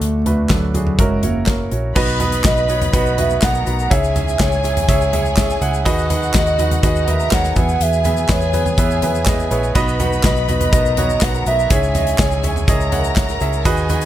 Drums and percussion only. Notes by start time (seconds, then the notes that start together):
0.02 closed hi-hat
0.26 closed hi-hat, floor tom
0.49 kick, snare, clap, closed hi-hat
0.74 closed hi-hat, floor tom
0.87 floor tom
0.99 kick, closed hi-hat
1.23 closed hi-hat, floor tom
1.46 kick, snare, clap, closed hi-hat
1.71 closed hi-hat
1.96 kick, crash, shaker
2.08 shaker
2.20 closed hi-hat, floor tom, shaker
2.32 closed hi-hat, shaker
2.44 kick, snare, clap, closed hi-hat, shaker
2.57 shaker
2.69 closed hi-hat, shaker
2.82 closed hi-hat, floor tom, shaker
2.93 kick, closed hi-hat, shaker
3.06 shaker
3.18 closed hi-hat, floor tom
3.30 shaker
3.42 kick, snare, clap, closed hi-hat, shaker
3.55 shaker
3.66 closed hi-hat, shaker
3.79 shaker
3.91 kick, closed hi-hat, shaker
4.04 shaker
4.16 closed hi-hat, floor tom, shaker
4.28 shaker
4.39 kick, snare, clap, closed hi-hat, shaker
4.52 shaker
4.64 closed hi-hat, shaker
4.77 closed hi-hat, floor tom, shaker
4.89 kick, closed hi-hat, shaker
5.01 shaker
5.13 closed hi-hat, floor tom
5.25 shaker
5.37 kick, snare, clap, closed hi-hat, shaker
5.50 snare, shaker
5.62 closed hi-hat, shaker
5.74 shaker
5.86 kick, closed hi-hat, shaker
5.99 shaker
6.10 closed hi-hat, floor tom, shaker
6.23 shaker
6.34 kick, snare, clap, closed hi-hat, shaker
6.46 shaker
6.59 closed hi-hat, floor tom, shaker
6.71 closed hi-hat, floor tom, shaker
6.83 kick, closed hi-hat, shaker
6.96 shaker
7.08 closed hi-hat, floor tom
7.20 shaker
7.31 kick, snare, clap, closed hi-hat, shaker
7.44 snare, shaker
7.56 kick, closed hi-hat, shaker
7.69 shaker
7.81 closed hi-hat, shaker
7.93 shaker
8.04 closed hi-hat, floor tom, shaker
8.17 shaker
8.29 kick, snare, clap, closed hi-hat, shaker
8.41 shaker
8.53 closed hi-hat, floor tom, shaker
8.66 floor tom, shaker
8.78 kick, closed hi-hat, shaker
8.91 shaker
9.02 closed hi-hat, floor tom, shaker
9.15 shaker
9.26 kick, snare, clap, closed hi-hat, shaker
9.39 shaker
9.51 closed hi-hat, shaker
9.63 shaker
9.75 kick, closed hi-hat, shaker
9.88 shaker
10.00 closed hi-hat, floor tom, shaker
10.13 shaker
10.23 kick, snare, clap, closed hi-hat, shaker
10.36 shaker
10.48 closed hi-hat, floor tom, shaker
10.61 closed hi-hat, floor tom, shaker
10.73 kick, closed hi-hat, shaker
10.85 shaker
10.97 closed hi-hat, floor tom
11.10 shaker
11.21 kick, snare, clap, closed hi-hat, shaker
11.35 shaker
11.46 closed hi-hat, shaker
11.59 shaker
11.70 kick, closed hi-hat, shaker
11.83 shaker
11.95 closed hi-hat, floor tom, shaker
12.07 closed hi-hat, shaker
12.18 kick, snare, clap, closed hi-hat, shaker
12.31 shaker
12.44 closed hi-hat, floor tom, shaker
12.56 floor tom, shaker
12.68 kick, closed hi-hat, shaker
12.80 shaker
12.92 closed hi-hat, floor tom
13.04 shaker
13.16 kick, snare, clap, closed hi-hat, shaker
13.29 snare, shaker
13.40 closed hi-hat, shaker
13.53 shaker
13.65 kick, closed hi-hat, shaker
13.77 shaker
13.89 closed hi-hat, floor tom, shaker
14.01 closed hi-hat, shaker